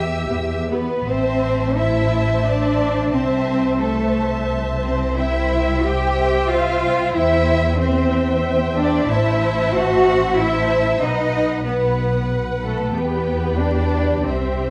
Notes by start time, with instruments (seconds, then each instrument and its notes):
Already playing: double bass section E2, cello section G4, violin section E5 E6
0.29 double bass section E2, viola section B3 G4
0.70 cello section B3, viola section B3 G4, violin section B4
1.06 double bass section A1, cello section C4, viola section C5 E5, violin section C5 A5
1.75 cello section E4, viola section C5 E5, violin section E5 A5
2.45 cello section D4, violin section D5
3.11 double bass section C2, cello section C4, viola section C5 E5, violin section C5 A5
3.79 cello section A3, violin section A4 A5, viola section C5 E5
4.82 cello section C4, violin section C5
5.17 cello section E4, viola section C5 E5, violin section E5 G5
5.84 cello section G4, viola section C5 E5, violin section G5
6.49 cello section F4, violin section F5
7.14 double bass section E2, cello section E4, viola section C5 E5, violin section E5 G5
7.79 cello section C4, viola section C5 E5, violin section C5 G5
8.77 cello section D4, violin section D5
9.09 double bass section A1, cello section E4, viola section C5 E5, violin section E5 A5
9.74 cello section F#4, violin section F#5
10.38 cello section E4, viola section C5 E5, violin section E5 A5
11.02 double bass section B1, cello section D#4, viola section B4, violin section D#5 F#5
11.64 cello section B3, violin section B4 F#5, viola section B4
12.63 cello section A3, violin section A4
12.93 double bass section E2, cello section B3, viola section G4 B4, violin section B4 G5
13.58 cello section D4, violin section D5
14.25 double bass section C2, cello section C4, viola section G4 E5, violin section C5 G5